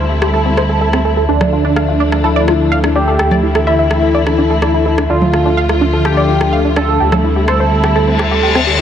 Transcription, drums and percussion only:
0.22 cross-stick medium
0.57 cross-stick medium
0.93 cross-stick soft
1.41 cross-stick medium
1.41 low conga medium
1.76 cross-stick medium
2.12 cross-stick medium
2.48 cross-stick soft
2.84 cross-stick medium
3.19 cross-stick medium
3.31 low conga medium
3.55 cross-stick soft
3.91 cross-stick medium
4.27 cross-stick medium
4.62 cross-stick medium
4.98 cross-stick medium
5.22 low conga medium
5.34 cross-stick medium
5.69 cross-stick soft
6.05 cross-stick medium
6.41 cross-stick soft
6.76 cross-stick medium
7.12 cross-stick medium
7.12 low conga medium
7.48 cross-stick soft
7.84 cross-stick soft
8.19 cross-stick soft
8.55 cross-stick soft

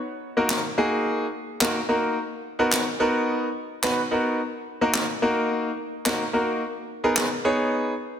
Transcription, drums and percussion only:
0.50 snare medium
0.50 clap loud
1.61 snare medium
1.61 clap loud
2.72 snare medium
2.72 clap loud
3.83 snare medium
3.83 clap loud
4.94 snare medium
4.94 clap loud
6.06 snare medium
6.06 clap loud
7.17 snare medium
7.17 clap loud

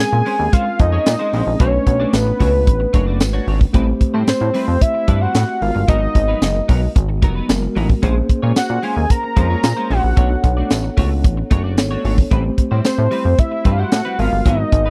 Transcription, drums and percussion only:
0.26 open hi-hat medium
0.53 kick loud
0.53 closed hi-hat loud
0.79 kick loud
0.79 closed hi-hat medium
1.06 snare loud
1.06 closed hi-hat loud
1.06 tambourine medium
1.33 open hi-hat medium
1.60 kick loud
1.60 closed hi-hat medium
1.87 kick medium
1.87 closed hi-hat medium
2.13 snare loud
2.13 closed hi-hat medium
2.13 tambourine medium
2.40 kick medium
2.40 open hi-hat medium
2.67 kick loud
2.67 closed hi-hat medium
2.94 kick loud
2.94 closed hi-hat medium
3.20 snare loud
3.20 closed hi-hat medium
3.20 tambourine medium
3.48 open hi-hat medium
3.61 kick medium
3.74 kick loud
3.74 closed hi-hat medium
4.01 kick medium
4.01 closed hi-hat medium
4.28 snare loud
4.28 closed hi-hat medium
4.28 tambourine medium
4.54 open hi-hat medium
4.81 kick loud
4.81 closed hi-hat medium
5.08 kick loud
5.08 closed hi-hat medium
5.35 snare loud
5.35 closed hi-hat medium
5.35 tambourine medium
5.62 open hi-hat medium
5.88 kick loud
5.88 closed hi-hat loud
6.15 kick medium
6.15 closed hi-hat medium
6.42 snare medium
6.42 closed hi-hat medium
6.42 tambourine medium
6.69 kick medium
6.69 open hi-hat medium
6.96 kick loud
6.96 closed hi-hat loud
7.22 kick loud
7.22 closed hi-hat medium
7.49 snare loud
7.49 closed hi-hat loud
7.49 tambourine medium
7.76 open hi-hat medium
7.89 kick medium
8.03 kick loud
8.03 closed hi-hat medium
8.29 kick medium
8.29 closed hi-hat medium
8.56 snare loud
8.56 closed hi-hat medium
8.56 tambourine medium
8.83 open hi-hat medium
9.10 kick loud
9.10 closed hi-hat loud
9.36 kick loud
9.36 closed hi-hat medium
9.63 snare loud
9.63 closed hi-hat medium
9.63 tambourine medium
9.91 open hi-hat medium
10.17 kick loud
10.17 closed hi-hat medium
10.44 kick medium
10.44 closed hi-hat medium
10.70 snare medium
10.70 closed hi-hat medium
10.70 tambourine medium
10.97 kick medium
10.97 open hi-hat medium
11.24 kick loud
11.24 closed hi-hat medium
11.51 kick loud
11.51 closed hi-hat medium
11.78 snare loud
11.78 closed hi-hat medium
11.78 tambourine loud
12.05 open hi-hat medium
12.18 kick medium
12.31 kick loud
12.31 closed hi-hat medium
12.58 kick medium
12.58 closed hi-hat medium
12.85 snare medium
12.85 closed hi-hat medium
12.85 tambourine medium
13.12 open hi-hat medium
13.39 kick loud
13.39 closed hi-hat loud
13.65 kick loud
13.65 closed hi-hat medium
13.92 snare loud
13.92 closed hi-hat loud
13.92 tambourine medium
14.19 open hi-hat medium
14.46 kick loud
14.46 closed hi-hat medium
14.72 kick medium
14.72 closed hi-hat medium

